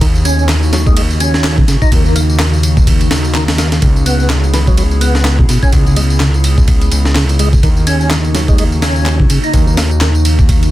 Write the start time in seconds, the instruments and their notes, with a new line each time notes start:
Already playing: ambient pad C#3
0.01 analog synth bass D#2, tonewheel organ D#3, ambient pad A#3 D#4 F#4, kick, ride, tambourine
0.15 tambourine
0.25 tonewheel organ C#4, ride, tambourine
0.39 tambourine
0.49 tonewheel organ D#3, snare, clap, ride, tambourine
0.63 tambourine
0.73 tonewheel organ F#3, snare, ride, tambourine
0.86 tonewheel organ G#3, kick, tambourine
0.97 tonewheel organ G#3, ride, tambourine
1.10 tambourine
1.20 tonewheel organ C#4, ride, tambourine
1.34 snare, tambourine
1.44 snare, clap, ride, tambourine
1.58 tonewheel organ C#3, kick
1.68 tonewheel organ C#3, snare, ride, tambourine
1.82 tonewheel organ D#4, kick, tambourine
1.92 analog synth bass D#2, tonewheel organ D#3, kick, ride, tambourine
2.06 tonewheel organ D#3, tambourine
2.16 tonewheel organ A#3, ride, tambourine
2.29 tambourine
2.39 tonewheel organ D#3, snare, clap, ride, tambourine
2.53 tambourine
2.63 ride, tambourine
2.77 kick, tambourine
2.87 kick, ride, tambourine
3.01 ride, tambourine
3.11 analog synth bass D#2, snare, ride, tambourine
3.24 tambourine
3.35 tonewheel organ D#3, snare, clap, ride, tambourine
3.48 snare, ride, tambourine
3.58 tonewheel organ A#3, snare, ride, tambourine
3.72 snare, ride, tambourine
3.82 analog synth bass C#2, tonewheel organ C#3, ambient pad B3 E4 G#4, kick, ride, tambourine
3.96 tambourine
4.06 tonewheel organ B3, ride, tambourine
4.20 tambourine
4.30 tonewheel organ C#3, snare, clap, ride, tambourine
4.44 tambourine
4.54 tonewheel organ E3, snare, ride, tambourine
4.67 tonewheel organ F#3, kick, tambourine
4.77 tonewheel organ F#3, ride, tambourine
4.91 tambourine
5.01 tonewheel organ B3, ride, tambourine
5.15 snare, tambourine
5.25 snare, clap, ride, tambourine
5.39 tonewheel organ B2, kick
5.49 tonewheel organ B2, snare, ride, tambourine
5.63 tonewheel organ C#4, kick, tambourine
5.73 analog synth bass C#2, tonewheel organ C#3, kick, ride, tambourine
5.86 tonewheel organ C#3, tambourine
5.96 tonewheel organ G#3, ride, tambourine
6.10 tambourine
6.20 tonewheel organ C#3, snare, clap, ride, tambourine
6.34 tambourine
6.44 ride, tambourine
6.58 kick, tambourine
6.68 kick, ride, tambourine
6.81 ride, tambourine
6.92 analog synth bass C#2, ride, tambourine
7.05 snare, tambourine
7.15 tonewheel organ C#3, snare, clap, ride, tambourine
7.29 ride, tambourine
7.39 tonewheel organ G#3, ride, tambourine
7.53 kick, tambourine
7.63 analog synth bass D#2, ambient pad C#3 A#3 D#4 F#4, tonewheel organ D#3, kick, ride, tambourine
7.77 tambourine
7.87 tonewheel organ C#4, ride, tambourine
8.01 tambourine
8.11 tonewheel organ D#3, snare, clap, ride, tambourine
8.24 tambourine
8.35 tonewheel organ F#3, snare, ride, tambourine
8.48 tonewheel organ G#3, kick, tambourine
8.58 tonewheel organ G#3, ride, tambourine
8.72 tambourine
8.82 tonewheel organ C#4, snare, ride, tambourine
8.96 tambourine
9.06 snare, clap, ride, tambourine
9.20 tonewheel organ C#3, kick
9.30 tonewheel organ C#3, ride, tambourine
9.44 tonewheel organ D#4, tambourine
9.54 analog synth bass D#2, tonewheel organ D#3, kick, ride, tambourine
9.67 tonewheel organ D#3, tambourine
9.77 tonewheel organ A#3, snare, ride, tambourine
9.91 tambourine
10.01 tonewheel organ D#3, snare, clap, ride, tambourine
10.15 tambourine
10.25 ride, tambourine
10.39 kick, tambourine
10.49 kick, ride, tambourine
10.63 ride, tambourine